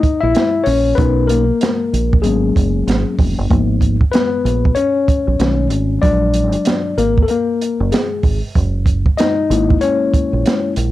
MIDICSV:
0, 0, Header, 1, 4, 480
1, 0, Start_track
1, 0, Tempo, 631579
1, 745, Time_signature, 4, 2, 24, 8
1, 8297, End_track
2, 0, Start_track
2, 0, Title_t, "Tine electric piano"
2, 0, Program_c, 0, 4
2, 0, Note_on_c, 0, 63, 82
2, 0, Note_on_c, 0, 75, 94
2, 149, Note_off_c, 0, 63, 0
2, 156, Note_on_c, 0, 76, 96
2, 179, Note_off_c, 0, 75, 0
2, 181, Note_on_c, 0, 64, 82
2, 483, Note_on_c, 0, 73, 87
2, 486, Note_off_c, 0, 64, 0
2, 504, Note_on_c, 0, 61, 74
2, 507, Note_off_c, 0, 76, 0
2, 723, Note_on_c, 0, 71, 92
2, 727, Note_off_c, 0, 61, 0
2, 737, Note_on_c, 0, 70, 48
2, 741, Note_off_c, 0, 73, 0
2, 741, Note_on_c, 0, 61, 45
2, 746, Note_on_c, 0, 63, 60
2, 749, Note_on_c, 0, 59, 68
2, 958, Note_off_c, 0, 70, 0
2, 967, Note_on_c, 0, 70, 86
2, 970, Note_off_c, 0, 59, 0
2, 981, Note_off_c, 0, 71, 0
2, 991, Note_on_c, 0, 58, 67
2, 1084, Note_off_c, 0, 61, 0
2, 1086, Note_off_c, 0, 63, 0
2, 1666, Note_off_c, 0, 70, 0
2, 1677, Note_off_c, 0, 58, 0
2, 1687, Note_on_c, 0, 68, 72
2, 1697, Note_on_c, 0, 54, 50
2, 1700, Note_on_c, 0, 58, 49
2, 1703, Note_on_c, 0, 59, 46
2, 1707, Note_on_c, 0, 56, 53
2, 1708, Note_on_c, 0, 61, 56
2, 2385, Note_off_c, 0, 68, 0
2, 2395, Note_off_c, 0, 56, 0
2, 2631, Note_off_c, 0, 54, 0
2, 2632, Note_off_c, 0, 58, 0
2, 2634, Note_off_c, 0, 59, 0
2, 2636, Note_off_c, 0, 61, 0
2, 2657, Note_on_c, 0, 53, 50
2, 2663, Note_on_c, 0, 58, 45
2, 2666, Note_on_c, 0, 59, 56
2, 3002, Note_off_c, 0, 53, 0
2, 3005, Note_off_c, 0, 58, 0
2, 3006, Note_off_c, 0, 59, 0
2, 3128, Note_on_c, 0, 71, 89
2, 3147, Note_on_c, 0, 59, 66
2, 3595, Note_off_c, 0, 59, 0
2, 3608, Note_on_c, 0, 73, 94
2, 3625, Note_on_c, 0, 61, 76
2, 3631, Note_off_c, 0, 71, 0
2, 4094, Note_off_c, 0, 61, 0
2, 4095, Note_on_c, 0, 51, 53
2, 4099, Note_on_c, 0, 57, 44
2, 4104, Note_on_c, 0, 61, 55
2, 4306, Note_off_c, 0, 73, 0
2, 4556, Note_off_c, 0, 51, 0
2, 4558, Note_off_c, 0, 57, 0
2, 4560, Note_off_c, 0, 61, 0
2, 4572, Note_on_c, 0, 74, 99
2, 4574, Note_on_c, 0, 54, 48
2, 4580, Note_on_c, 0, 56, 47
2, 4586, Note_on_c, 0, 62, 72
2, 5269, Note_off_c, 0, 54, 0
2, 5272, Note_off_c, 0, 56, 0
2, 5275, Note_off_c, 0, 62, 0
2, 5302, Note_on_c, 0, 70, 88
2, 5310, Note_on_c, 0, 58, 65
2, 5320, Note_off_c, 0, 74, 0
2, 5492, Note_on_c, 0, 69, 69
2, 5493, Note_off_c, 0, 58, 0
2, 5509, Note_off_c, 0, 70, 0
2, 5539, Note_off_c, 0, 69, 0
2, 5547, Note_on_c, 0, 70, 78
2, 5555, Note_on_c, 0, 58, 65
2, 5999, Note_off_c, 0, 58, 0
2, 6021, Note_on_c, 0, 68, 63
2, 6033, Note_on_c, 0, 56, 49
2, 6040, Note_off_c, 0, 70, 0
2, 6384, Note_off_c, 0, 68, 0
2, 6390, Note_off_c, 0, 56, 0
2, 6972, Note_on_c, 0, 75, 94
2, 6989, Note_on_c, 0, 63, 78
2, 7222, Note_on_c, 0, 56, 54
2, 7226, Note_on_c, 0, 58, 50
2, 7231, Note_on_c, 0, 64, 61
2, 7428, Note_off_c, 0, 75, 0
2, 7436, Note_off_c, 0, 63, 0
2, 7456, Note_on_c, 0, 73, 91
2, 7473, Note_on_c, 0, 61, 69
2, 8150, Note_off_c, 0, 73, 0
2, 8158, Note_off_c, 0, 61, 0
2, 8297, Note_off_c, 0, 56, 0
2, 8297, Note_off_c, 0, 58, 0
2, 8297, Note_off_c, 0, 64, 0
2, 8297, End_track
3, 0, Start_track
3, 0, Title_t, "Fingered electric bass"
3, 0, Program_c, 1, 33
3, 176, Note_on_c, 1, 34, 77
3, 250, Note_off_c, 1, 34, 0
3, 507, Note_on_c, 1, 34, 91
3, 703, Note_off_c, 1, 34, 0
3, 745, Note_on_c, 1, 35, 99
3, 1139, Note_off_c, 1, 35, 0
3, 1468, Note_on_c, 1, 34, 75
3, 1705, Note_off_c, 1, 34, 0
3, 1705, Note_on_c, 1, 32, 98
3, 1902, Note_off_c, 1, 32, 0
3, 1945, Note_on_c, 1, 30, 88
3, 2142, Note_off_c, 1, 30, 0
3, 2182, Note_on_c, 1, 32, 78
3, 2305, Note_off_c, 1, 32, 0
3, 2423, Note_on_c, 1, 29, 86
3, 2545, Note_off_c, 1, 29, 0
3, 2570, Note_on_c, 1, 30, 85
3, 2647, Note_off_c, 1, 30, 0
3, 2664, Note_on_c, 1, 32, 101
3, 3059, Note_off_c, 1, 32, 0
3, 3381, Note_on_c, 1, 34, 87
3, 3580, Note_off_c, 1, 34, 0
3, 4009, Note_on_c, 1, 35, 90
3, 4086, Note_off_c, 1, 35, 0
3, 4099, Note_on_c, 1, 35, 88
3, 4340, Note_off_c, 1, 35, 0
3, 4340, Note_on_c, 1, 32, 78
3, 4539, Note_off_c, 1, 32, 0
3, 4581, Note_on_c, 1, 34, 98
3, 4977, Note_off_c, 1, 34, 0
3, 5300, Note_on_c, 1, 32, 76
3, 5499, Note_off_c, 1, 32, 0
3, 5930, Note_on_c, 1, 30, 85
3, 6007, Note_off_c, 1, 30, 0
3, 6259, Note_on_c, 1, 32, 81
3, 6383, Note_off_c, 1, 32, 0
3, 6502, Note_on_c, 1, 30, 91
3, 6897, Note_off_c, 1, 30, 0
3, 7219, Note_on_c, 1, 32, 86
3, 7419, Note_off_c, 1, 32, 0
3, 7850, Note_on_c, 1, 34, 83
3, 7927, Note_off_c, 1, 34, 0
3, 8185, Note_on_c, 1, 34, 92
3, 8297, Note_off_c, 1, 34, 0
3, 8297, End_track
4, 0, Start_track
4, 0, Title_t, "Drums"
4, 25, Note_on_c, 9, 36, 83
4, 26, Note_on_c, 9, 42, 61
4, 101, Note_off_c, 9, 36, 0
4, 102, Note_off_c, 9, 42, 0
4, 264, Note_on_c, 9, 42, 69
4, 278, Note_on_c, 9, 38, 96
4, 340, Note_off_c, 9, 42, 0
4, 354, Note_off_c, 9, 38, 0
4, 500, Note_on_c, 9, 46, 59
4, 576, Note_off_c, 9, 46, 0
4, 744, Note_on_c, 9, 42, 75
4, 745, Note_on_c, 9, 36, 90
4, 820, Note_off_c, 9, 42, 0
4, 821, Note_off_c, 9, 36, 0
4, 983, Note_on_c, 9, 42, 66
4, 1059, Note_off_c, 9, 42, 0
4, 1223, Note_on_c, 9, 42, 88
4, 1239, Note_on_c, 9, 38, 108
4, 1299, Note_off_c, 9, 42, 0
4, 1315, Note_off_c, 9, 38, 0
4, 1472, Note_on_c, 9, 42, 63
4, 1548, Note_off_c, 9, 42, 0
4, 1619, Note_on_c, 9, 36, 96
4, 1695, Note_off_c, 9, 36, 0
4, 1699, Note_on_c, 9, 42, 74
4, 1775, Note_off_c, 9, 42, 0
4, 1946, Note_on_c, 9, 36, 84
4, 1951, Note_on_c, 9, 42, 66
4, 2022, Note_off_c, 9, 36, 0
4, 2027, Note_off_c, 9, 42, 0
4, 2187, Note_on_c, 9, 42, 75
4, 2201, Note_on_c, 9, 38, 91
4, 2263, Note_off_c, 9, 42, 0
4, 2277, Note_off_c, 9, 38, 0
4, 2421, Note_on_c, 9, 46, 56
4, 2422, Note_on_c, 9, 36, 97
4, 2497, Note_off_c, 9, 46, 0
4, 2498, Note_off_c, 9, 36, 0
4, 2664, Note_on_c, 9, 36, 94
4, 2667, Note_on_c, 9, 42, 74
4, 2740, Note_off_c, 9, 36, 0
4, 2743, Note_off_c, 9, 42, 0
4, 2895, Note_on_c, 9, 36, 73
4, 2901, Note_on_c, 9, 42, 64
4, 2971, Note_off_c, 9, 36, 0
4, 2977, Note_off_c, 9, 42, 0
4, 3046, Note_on_c, 9, 36, 83
4, 3122, Note_off_c, 9, 36, 0
4, 3140, Note_on_c, 9, 42, 80
4, 3156, Note_on_c, 9, 38, 98
4, 3216, Note_off_c, 9, 42, 0
4, 3232, Note_off_c, 9, 38, 0
4, 3389, Note_on_c, 9, 42, 70
4, 3465, Note_off_c, 9, 42, 0
4, 3535, Note_on_c, 9, 36, 87
4, 3611, Note_off_c, 9, 36, 0
4, 3614, Note_on_c, 9, 42, 76
4, 3690, Note_off_c, 9, 42, 0
4, 3862, Note_on_c, 9, 36, 84
4, 3863, Note_on_c, 9, 42, 66
4, 3938, Note_off_c, 9, 36, 0
4, 3939, Note_off_c, 9, 42, 0
4, 4100, Note_on_c, 9, 42, 71
4, 4115, Note_on_c, 9, 38, 95
4, 4176, Note_off_c, 9, 42, 0
4, 4191, Note_off_c, 9, 38, 0
4, 4334, Note_on_c, 9, 42, 75
4, 4410, Note_off_c, 9, 42, 0
4, 4580, Note_on_c, 9, 42, 70
4, 4581, Note_on_c, 9, 36, 94
4, 4656, Note_off_c, 9, 42, 0
4, 4657, Note_off_c, 9, 36, 0
4, 4815, Note_on_c, 9, 42, 66
4, 4891, Note_off_c, 9, 42, 0
4, 4958, Note_on_c, 9, 42, 50
4, 5034, Note_off_c, 9, 42, 0
4, 5055, Note_on_c, 9, 42, 90
4, 5071, Note_on_c, 9, 38, 106
4, 5131, Note_off_c, 9, 42, 0
4, 5147, Note_off_c, 9, 38, 0
4, 5306, Note_on_c, 9, 42, 62
4, 5382, Note_off_c, 9, 42, 0
4, 5454, Note_on_c, 9, 36, 93
4, 5530, Note_off_c, 9, 36, 0
4, 5533, Note_on_c, 9, 42, 74
4, 5609, Note_off_c, 9, 42, 0
4, 5787, Note_on_c, 9, 42, 64
4, 5863, Note_off_c, 9, 42, 0
4, 6021, Note_on_c, 9, 42, 77
4, 6035, Note_on_c, 9, 38, 104
4, 6097, Note_off_c, 9, 42, 0
4, 6111, Note_off_c, 9, 38, 0
4, 6256, Note_on_c, 9, 46, 57
4, 6258, Note_on_c, 9, 36, 93
4, 6332, Note_off_c, 9, 46, 0
4, 6334, Note_off_c, 9, 36, 0
4, 6502, Note_on_c, 9, 36, 93
4, 6503, Note_on_c, 9, 42, 72
4, 6578, Note_off_c, 9, 36, 0
4, 6579, Note_off_c, 9, 42, 0
4, 6732, Note_on_c, 9, 36, 79
4, 6738, Note_on_c, 9, 42, 66
4, 6808, Note_off_c, 9, 36, 0
4, 6814, Note_off_c, 9, 42, 0
4, 6884, Note_on_c, 9, 36, 88
4, 6960, Note_off_c, 9, 36, 0
4, 6979, Note_on_c, 9, 42, 85
4, 6995, Note_on_c, 9, 38, 96
4, 7055, Note_off_c, 9, 42, 0
4, 7071, Note_off_c, 9, 38, 0
4, 7228, Note_on_c, 9, 42, 67
4, 7304, Note_off_c, 9, 42, 0
4, 7375, Note_on_c, 9, 36, 95
4, 7451, Note_off_c, 9, 36, 0
4, 7456, Note_on_c, 9, 42, 68
4, 7532, Note_off_c, 9, 42, 0
4, 7703, Note_on_c, 9, 36, 78
4, 7706, Note_on_c, 9, 42, 65
4, 7779, Note_off_c, 9, 36, 0
4, 7782, Note_off_c, 9, 42, 0
4, 7946, Note_on_c, 9, 42, 76
4, 7961, Note_on_c, 9, 38, 92
4, 8022, Note_off_c, 9, 42, 0
4, 8037, Note_off_c, 9, 38, 0
4, 8180, Note_on_c, 9, 42, 76
4, 8256, Note_off_c, 9, 42, 0
4, 8297, End_track
0, 0, End_of_file